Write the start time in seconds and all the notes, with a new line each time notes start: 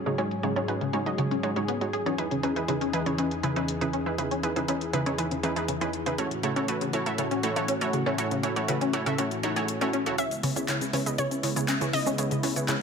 Already playing: G#2 F#3 C#4 G#4
0.06 C#3 G#3 D#4 F#4 G#4 C#5
0.18 G#3 C#4 D#4 F#4 G#4 C#5, closed hi-hat
0.31 closed hi-hat
0.43 C#3 G#3 D#4 F#4 G#4 C#5, closed hi-hat
0.56 G#3 C#4 D#4 F#4 G#4 C#5, closed hi-hat
0.68 G#3 D#4 F#4 G#4 B4, closed hi-hat
0.81 C#3, closed hi-hat
0.93 G#3 C#4 D#4 F#4 G#4 C#5, closed hi-hat
1.06 G#3 D#4 F#4 G#4 D#5, closed hi-hat
1.18 C#3 G#3 D#4 F#4 G#4 C#5, closed hi-hat
1.31 C#4, closed hi-hat
1.43 G#3 D#4 F#4 G#4 C#5, closed hi-hat
1.56 G#3 C#4 D#4 F#4 G#4 C#5, closed hi-hat
1.68 B3, closed hi-hat
1.81 G#3 D#4 F#4 G#4 C#5, closed hi-hat
1.93 G#4, closed hi-hat
2.06 E3 C#4 D#4 F#4 G#4 C#5, closed hi-hat
2.18 E2 E3 D#4 E4 G#4 B4, closed hi-hat
2.31 C#3, closed hi-hat
2.43 E3 C#4 D#4 E4 G#4 B4, closed hi-hat
2.56 E3 D#4 E4 G#4 B4, closed hi-hat
2.68 C#3 E3 D#4 E4 G#4 B4, closed hi-hat
2.81 C#4, closed hi-hat
2.93 E3 D#4 E4 G#4 B4, closed hi-hat
3.06 C#3 E3 D#4 E4 G#4 C#5, closed hi-hat
3.18 E3 C#4 D#4 E4 G#4 B4, closed hi-hat
3.31 closed hi-hat
3.43 C#3 E3 D#4 E4 G#4 B4, closed hi-hat
3.56 E3 C#4 D#4 E4 G#4 B4, closed hi-hat
3.68 closed hi-hat
3.81 C#3 E3 D#4 E4 G#4 B4, closed hi-hat
3.93 C#4, closed hi-hat
4.06 E3 D#4 E4 G#4 B4
4.18 C#3 E3 D#4 E4 G#4 B4, closed hi-hat
4.31 C#4, closed hi-hat
4.43 E3 D#4 E4 G#4 B4, closed hi-hat
4.56 C#3 E3 D#4 E4 G#4 B4, closed hi-hat
4.68 E3 C#4 D#4 E4 G#4 B4, closed hi-hat
4.81 closed hi-hat
4.93 C#3 E3 D#4 E4 G#4 B4, closed hi-hat
5.06 E3 C#4 D#4 E4 G#4 C#5, closed hi-hat
5.18 E3 D#4 E4 G#4 B4, closed hi-hat
5.31 C#3, closed hi-hat
5.43 E3 C#4 D#4 E4 G#4 B4, closed hi-hat
5.56 E3 D#4 E4 G#4 B4, closed hi-hat
5.68 C#3, closed hi-hat
5.81 E3 C#4 D#4 E4 G#4 B4, closed hi-hat
5.93 closed hi-hat
6.06 C#3 D#4 E4 G#4 B4, closed hi-hat
6.18 A2 A3 C#4 E4 F#4 A4 C#5, closed hi-hat
6.31 closed hi-hat
6.43 C#3 A3 E4 F#4 A4 C#5, closed hi-hat
6.56 A3 C#4 E4 F#4 A4 C#5, closed hi-hat
6.68 A3 E4 F#4 A4 B4, closed hi-hat
6.81 C#3, closed hi-hat
6.93 A3 C#4 E4 F#4 A4 C#5, closed hi-hat
7.06 A3 E4 F#4 A4 E5, closed hi-hat
7.18 C#3 A3 E4 F#4 A4 C#5, closed hi-hat
7.31 C#4, closed hi-hat
7.43 A3 E4 F#4 A4 C#5, closed hi-hat
7.56 C#3 A3 E4 F#4 A4 C#5, closed hi-hat
7.68 C#4, closed hi-hat
7.81 A3 E4 F#4 A4 C#5, closed hi-hat
7.93 C#3, closed hi-hat
8.06 A3 C#4 E4 F#4 A4 C#5
8.18 A3 E4 F#4 A4 C#5, closed hi-hat
8.31 C#3, closed hi-hat
8.43 A3 C#4 E4 F#4 A4 C#5, closed hi-hat
8.56 A3 E4 F#4 A4 C#5, closed hi-hat
8.68 C#3 A3 E4 F#4 A4 B4, closed hi-hat
8.81 C#4, closed hi-hat
8.93 A3 E4 F#4 A4 C#5, closed hi-hat
9.06 C#3 A3 E4 F#4 A4 E5, closed hi-hat
9.18 A3 C#4 E4 F#4 A4 C#5, closed hi-hat
9.31 closed hi-hat
9.43 A3 D#4 E4 F#4 A4 C#5, closed hi-hat
9.56 A3 E4 F#4 G#4 A4 C#5, closed hi-hat
9.68 closed hi-hat
9.81 A3 C#4 E4 F#4 A4 C#5, closed hi-hat
9.93 C#4, closed hi-hat
10.06 C#3 E4 F#4 A4 C#5, closed hi-hat
10.18 C#3 G#3 B3 C#4 E4 B4 C#5 E5, closed hi-hat, shaker
10.31 closed hi-hat, shaker
10.43 C#3 E4 G#4 B4 C#5, open hi-hat
10.56 C#3 C#4 E4 G#4 B4 C#5, closed hi-hat, shaker
10.68 C#3 E4 G#4 B4 C#5, clap, closed hi-hat, shaker
10.81 C#3, closed hi-hat, shaker
10.93 C#3 C#4 E4 G#4 B4 C#5, open hi-hat
11.06 C#3 E4 G#4 B4 D#5, closed hi-hat, shaker
11.18 C#3 E4 G#4 B4 C#5, closed hi-hat, shaker
11.31 C#4, closed hi-hat, shaker
11.43 C#3 E4 G#4 B4 C#5, open hi-hat
11.56 C#3 E4 G#4 B4 C#5, closed hi-hat, shaker
11.68 C#4, clap, closed hi-hat, shaker
11.81 C#3 E4 G#4 B4 C#5, closed hi-hat, shaker
11.93 C#3 D#5, open hi-hat
12.06 C#3 C#4 E4 G#4 B4 C#5, shaker
12.18 C#3 E4 G#4 B4 C#5, closed hi-hat, shaker
12.31 C#3, closed hi-hat, shaker
12.43 C#3 C#4 E4 G#4 B4 C#5, open hi-hat
12.56 C#3 E4 G#4 B4 C#5, closed hi-hat, shaker
12.68 C#3 E4 G#4 B4 C#5, clap, closed hi-hat, shaker